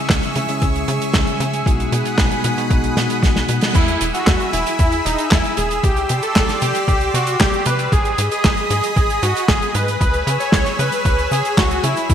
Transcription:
Already playing: C#3 G#3 C#4 E4 G#4 E5 C#6 E6
0.09 C#2, kick, snare, clap, closed hi-hat
0.23 closed hi-hat
0.35 C#3 G#3 C#4 E4 G#4, closed hi-hat
0.49 C#3 G#3 C#4 E4 G#4, closed hi-hat
0.62 C#2, kick, closed hi-hat
0.76 closed hi-hat
0.88 C#3, closed hi-hat
1.02 closed hi-hat
1.13 C#2, kick, snare, clap, closed hi-hat
1.27 closed hi-hat
1.40 C#3, closed hi-hat
1.53 closed hi-hat
1.66 B1 B2 G#3 B3 D#4 F#4 F#5 B5 D#6, kick, closed hi-hat
1.80 closed hi-hat
1.92 B2, closed hi-hat
2.05 closed hi-hat
2.18 B1, kick, snare, clap, closed hi-hat
2.31 closed hi-hat
2.44 B2 G#3 B3 D#4 F#4, closed hi-hat
2.57 B2 G#3 B3 D#4 F#4, closed hi-hat
2.70 B1, kick, closed hi-hat
2.84 closed hi-hat
2.97 B2, snare, closed hi-hat
3.10 closed hi-hat
3.23 B1, kick, snare, closed hi-hat
3.36 snare, closed hi-hat
3.48 B2, closed hi-hat
3.61 snare, closed hi-hat
3.75 E2 E4 G#4 E5 B5 E6, kick, closed hi-hat, crash, cabasa
3.88 closed hi-hat, cabasa
4.01 E1, closed hi-hat, cabasa
4.14 F#4, closed hi-hat, cabasa
4.27 E2, kick, snare, clap, closed hi-hat, cabasa
4.40 closed hi-hat, cabasa
4.53 E1 E4, closed hi-hat, cabasa
4.66 closed hi-hat, cabasa
4.79 E2 E4, kick, closed hi-hat, cabasa
4.92 closed hi-hat, cabasa
5.05 E1 D#4, closed hi-hat, cabasa
5.18 closed hi-hat, cabasa
5.31 E2 E4, kick, snare, clap, closed hi-hat, cabasa
5.44 closed hi-hat, cabasa
5.57 E1 G#4, closed hi-hat, cabasa
5.70 closed hi-hat, cabasa
5.84 C2 G4 D5 C6, kick, closed hi-hat, cabasa
5.96 closed hi-hat, cabasa
6.09 C3, closed hi-hat, cabasa
6.22 A4, closed hi-hat, cabasa
6.36 C2, kick, snare, clap, closed hi-hat, cabasa
6.49 snare, closed hi-hat, cabasa
6.61 C3 G4, closed hi-hat, cabasa
6.75 closed hi-hat, cabasa
6.88 C2 G4, kick, closed hi-hat, cabasa
7.01 closed hi-hat, cabasa
7.14 C3 F#4, closed hi-hat, cabasa
7.27 closed hi-hat, cabasa
7.40 C2 G4, kick, snare, clap, closed hi-hat, cabasa
7.53 closed hi-hat, cabasa
7.66 C3 B4, closed hi-hat, cabasa
7.79 closed hi-hat, cabasa
7.92 G#1 G#4 D#5 B5 D#6, kick, closed hi-hat, cabasa
8.05 closed hi-hat, cabasa
8.18 G#2, closed hi-hat, cabasa
8.31 G#4, closed hi-hat, cabasa
8.44 G#1, kick, snare, clap, closed hi-hat, cabasa
8.57 closed hi-hat, cabasa
8.70 G#2 G#4, closed hi-hat, cabasa
8.84 closed hi-hat, cabasa
8.96 G#1 G#4, kick, closed hi-hat, cabasa
9.10 closed hi-hat, cabasa
9.23 G#2 F#4, closed hi-hat, cabasa
9.36 closed hi-hat, cabasa
9.48 G#1 G#4, kick, snare, clap, closed hi-hat, cabasa
9.62 closed hi-hat, cabasa
9.75 G#2 B4, closed hi-hat, cabasa
9.88 closed hi-hat, cabasa
10.01 C#2 B4 C#5 B5 E6, kick, closed hi-hat, cabasa
10.14 closed hi-hat, cabasa
10.27 C#3, closed hi-hat, cabasa
10.40 C#5, closed hi-hat, cabasa
10.52 C#2, kick, snare, clap, closed hi-hat, cabasa
10.66 snare, closed hi-hat, cabasa
10.79 C#3 B4, closed hi-hat, cabasa
10.92 closed hi-hat, cabasa
11.05 C#2 B4, kick, closed hi-hat, cabasa
11.19 closed hi-hat, cabasa
11.31 C#3 G#4, closed hi-hat, cabasa
11.45 closed hi-hat, cabasa
11.57 C#2 F#4, kick, snare, clap, closed hi-hat, cabasa
11.71 closed hi-hat, cabasa
11.84 C#3 E4, closed hi-hat, cabasa
11.96 closed hi-hat, cabasa
12.10 E2 G#3 B3 E4 G#4 E5 B5, kick, closed hi-hat, cabasa

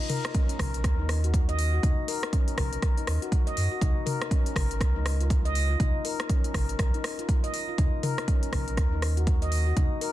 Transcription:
0.10 A#4, open hi-hat, mid tom
0.25 cross-stick, closed hi-hat
0.34 C#4, kick, closed hi-hat
0.49 closed hi-hat
0.59 A#1 A#4, kick, cross-stick, open hi-hat, mid tom
0.74 closed hi-hat
0.84 D#2, kick, cross-stick, closed hi-hat
0.99 D#4
1.09 cross-stick, open hi-hat
1.24 F#4, closed hi-hat
1.34 kick, closed hi-hat
1.49 D#5, closed hi-hat
1.59 open hi-hat
1.74 F#4
1.83 D#2 D#4, kick, closed hi-hat, mid tom
2.08 A#4, open hi-hat
2.23 cross-stick, closed hi-hat
2.33 C#4, kick, closed hi-hat
2.48 closed hi-hat
2.58 A#1 A#4, kick, cross-stick, open hi-hat, mid tom
2.73 closed hi-hat
2.82 A#4, kick, cross-stick, closed hi-hat
2.98 D#4, closed hi-hat
3.07 D#2, cross-stick, open hi-hat
3.22 F#4, closed hi-hat
3.32 kick, closed hi-hat
3.47 D#5, closed hi-hat
3.57 F#2, open hi-hat
3.72 F#4
3.81 C#2 D#4, kick, closed hi-hat, mid tom
4.06 A#4, open hi-hat, mid tom
4.22 cross-stick, closed hi-hat
4.31 C#4, kick, closed hi-hat
4.46 closed hi-hat
4.56 G#1 A#4, kick, cross-stick, open hi-hat, mid tom
4.71 closed hi-hat
4.81 C#2 A#4, kick, cross-stick, closed hi-hat
4.96 D#4
5.06 cross-stick, open hi-hat
5.21 F4, closed hi-hat
5.30 kick, closed hi-hat
5.45 D#5, closed hi-hat
5.55 open hi-hat
5.70 F4
5.80 C#2 D#4, kick, closed hi-hat, mid tom
6.05 A#4, open hi-hat
6.20 cross-stick, closed hi-hat
6.29 C#4, kick, closed hi-hat
6.44 closed hi-hat
6.54 G#1 A#4, kick, cross-stick, open hi-hat, mid tom
6.69 closed hi-hat
6.79 C#2 A#4, kick, cross-stick, closed hi-hat
6.94 D#4, closed hi-hat
7.04 cross-stick, open hi-hat
7.19 F4, closed hi-hat
7.29 kick, closed hi-hat
7.44 D#5, closed hi-hat
7.54 open hi-hat
7.68 F4
7.78 D#2 D#4, kick, closed hi-hat, mid tom
8.03 A#4, open hi-hat, mid tom
8.18 cross-stick, closed hi-hat
8.28 C#4, kick, closed hi-hat
8.43 closed hi-hat
8.53 A#1 A#4, kick, cross-stick, open hi-hat, mid tom
8.68 closed hi-hat
8.77 D#2 A#4, kick, cross-stick, closed hi-hat
8.92 D#4
9.02 cross-stick, open hi-hat
9.17 F#4, closed hi-hat
9.27 kick, closed hi-hat
9.42 D#5, closed hi-hat
9.52 open hi-hat
9.67 F#4
9.77 D#2 D#4, kick, closed hi-hat, mid tom
10.01 A#4, open hi-hat

